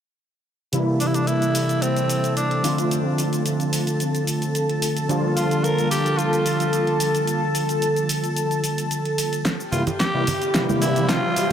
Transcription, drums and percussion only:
0.73 closed hi-hat medium
0.73 shaker soft
1.00 open hi-hat medium
1.00 shaker medium
1.14 closed hi-hat soft
1.14 shaker soft
1.27 closed hi-hat medium
1.27 shaker soft
1.42 closed hi-hat soft
1.42 shaker soft
1.55 open hi-hat medium
1.55 shaker medium
1.69 closed hi-hat soft
1.69 shaker soft
1.82 closed hi-hat medium
1.82 shaker soft
1.96 closed hi-hat soft
1.96 shaker soft
2.09 open hi-hat medium
2.09 shaker medium
2.24 closed hi-hat soft
2.24 shaker soft
2.37 closed hi-hat medium
2.37 shaker soft
2.51 closed hi-hat soft
2.64 open hi-hat medium
2.64 shaker medium
2.78 closed hi-hat soft
2.78 shaker soft
2.91 closed hi-hat medium
2.91 shaker soft
3.18 open hi-hat medium
3.18 shaker medium
3.33 closed hi-hat soft
3.33 shaker soft
3.46 closed hi-hat medium
3.46 shaker soft
3.60 closed hi-hat soft
3.60 shaker soft
3.73 open hi-hat loud
3.73 shaker medium
3.87 closed hi-hat soft
3.87 shaker soft
4.00 closed hi-hat medium
4.00 shaker soft
4.15 closed hi-hat soft
4.15 shaker soft
4.27 open hi-hat medium
4.27 shaker medium
4.42 closed hi-hat soft
4.42 shaker soft
4.55 closed hi-hat medium
4.55 shaker soft
4.69 closed hi-hat soft
4.82 open hi-hat loud
4.82 shaker medium
4.97 closed hi-hat soft
4.97 shaker soft
5.09 closed hi-hat medium
5.09 shaker soft
5.37 open hi-hat medium
5.37 shaker medium
5.51 closed hi-hat soft
5.51 shaker soft
5.64 closed hi-hat medium
5.64 shaker soft
5.78 closed hi-hat soft
5.78 shaker soft
5.91 open hi-hat medium
5.91 shaker medium
6.06 closed hi-hat soft
6.06 shaker soft
6.19 closed hi-hat medium
6.19 shaker soft
6.33 closed hi-hat soft
6.33 shaker soft
6.46 open hi-hat loud
6.46 shaker medium
6.60 closed hi-hat soft
6.60 shaker soft
6.73 closed hi-hat medium
6.73 shaker soft
6.87 closed hi-hat soft
7.00 open hi-hat loud
7.00 shaker medium
7.15 closed hi-hat soft
7.15 shaker soft
7.27 closed hi-hat medium
7.27 shaker soft
7.55 open hi-hat loud
7.55 shaker medium
7.69 closed hi-hat soft
7.69 shaker soft
7.82 closed hi-hat medium
7.82 shaker soft
7.96 closed hi-hat soft
7.96 shaker soft
8.09 open hi-hat loud
8.09 shaker medium
8.24 closed hi-hat soft
8.24 shaker soft
8.36 closed hi-hat medium
8.36 shaker soft
8.51 closed hi-hat soft
8.51 shaker soft
8.64 open hi-hat medium
8.64 shaker medium
8.78 closed hi-hat soft
8.78 shaker soft
8.91 closed hi-hat medium
8.91 shaker soft
9.05 closed hi-hat soft
9.18 open hi-hat loud
9.18 shaker medium
9.33 closed hi-hat soft
9.33 shaker soft
9.45 kick loud
9.45 snare soft
9.45 closed hi-hat medium
9.45 shaker soft
9.60 shaker soft
9.72 open hi-hat medium
9.72 low conga medium
9.72 shaker medium
9.87 closed hi-hat medium
9.87 low conga medium
9.87 shaker soft
10.00 kick loud
10.00 snare soft
10.00 closed hi-hat medium
10.00 shaker soft
10.27 open hi-hat loud
10.27 low conga medium
10.27 shaker medium
10.42 closed hi-hat medium
10.42 shaker soft
10.54 kick loud
10.54 snare soft
10.54 closed hi-hat medium
10.54 shaker soft
10.69 high conga medium
10.69 shaker soft
10.82 open hi-hat loud
10.82 shaker medium
10.96 closed hi-hat soft
10.96 shaker soft
11.09 kick loud
11.09 snare medium
11.09 closed hi-hat medium
11.09 shaker soft
11.36 open hi-hat medium
11.36 shaker medium

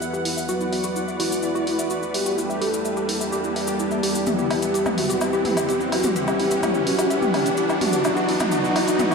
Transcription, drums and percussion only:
0.02 cabasa medium
0.14 cabasa soft
0.25 open hi-hat loud
0.38 cabasa medium
0.49 cabasa medium
0.61 cabasa soft
0.73 open hi-hat loud
0.84 cabasa medium
0.96 cabasa medium
1.08 cabasa soft
1.20 open hi-hat loud
1.32 cabasa medium
1.42 cabasa medium
1.55 cabasa soft
1.67 open hi-hat loud
1.79 cabasa medium
1.90 cabasa medium
2.03 cabasa soft
2.14 open hi-hat loud
2.26 cabasa medium
2.38 cabasa medium
2.50 cabasa soft
2.62 open hi-hat loud
2.74 cabasa medium
2.85 cabasa medium
2.97 cabasa soft
3.09 open hi-hat loud
3.21 cabasa medium
3.32 cabasa medium
3.44 cabasa soft
3.56 open hi-hat loud
3.67 cabasa medium
3.79 cabasa medium
3.91 cabasa soft
4.03 open hi-hat loud
4.15 cabasa medium
4.26 closed hi-hat soft
4.26 mid tom medium
4.26 cabasa medium
4.39 cabasa soft
4.51 open hi-hat loud
4.51 low woodblock medium
4.62 closed hi-hat soft
4.62 cabasa medium
4.74 closed hi-hat soft
4.74 cabasa medium
4.86 mid tom medium
4.86 cabasa soft
4.86 low woodblock medium
4.98 open hi-hat loud
5.10 closed hi-hat soft
5.10 cabasa medium
5.21 closed hi-hat soft
5.21 cabasa medium
5.21 low woodblock medium
5.33 cabasa soft
5.45 mid tom medium
5.45 open hi-hat loud
5.57 closed hi-hat soft
5.57 cabasa medium
5.57 low woodblock medium
5.69 closed hi-hat soft
5.69 cabasa medium
5.80 cabasa soft
5.92 open hi-hat loud
5.92 low woodblock medium
6.03 closed hi-hat soft
6.03 mid tom medium
6.03 cabasa medium
6.16 closed hi-hat soft
6.16 cabasa medium
6.27 cabasa soft
6.27 low woodblock medium
6.40 open hi-hat loud
6.51 closed hi-hat soft
6.51 cabasa medium
6.63 closed hi-hat soft
6.63 mid tom medium
6.63 cabasa medium
6.63 low woodblock medium
6.74 cabasa soft
6.87 open hi-hat loud
6.99 closed hi-hat soft
6.99 cabasa medium
6.99 low woodblock medium
7.10 closed hi-hat soft
7.10 cabasa medium
7.22 mid tom medium
7.22 cabasa soft
7.34 open hi-hat loud
7.34 low woodblock medium
7.46 closed hi-hat soft
7.46 cabasa medium
7.57 closed hi-hat soft
7.57 cabasa medium
7.69 cabasa soft
7.69 low woodblock medium
7.81 mid tom loud
7.81 open hi-hat loud
7.93 closed hi-hat soft
7.93 cabasa medium
8.04 closed hi-hat soft
8.04 cabasa medium
8.04 low woodblock medium
8.16 cabasa soft
8.29 open hi-hat loud
8.40 closed hi-hat soft
8.40 mid tom loud
8.40 cabasa medium
8.40 low woodblock medium
8.51 closed hi-hat soft
8.51 cabasa medium
8.64 cabasa soft
8.76 open hi-hat medium
8.76 low woodblock medium
8.88 closed hi-hat soft
8.88 cabasa medium
8.99 closed hi-hat soft
8.99 mid tom loud
8.99 cabasa medium
9.11 cabasa soft
9.11 low woodblock medium

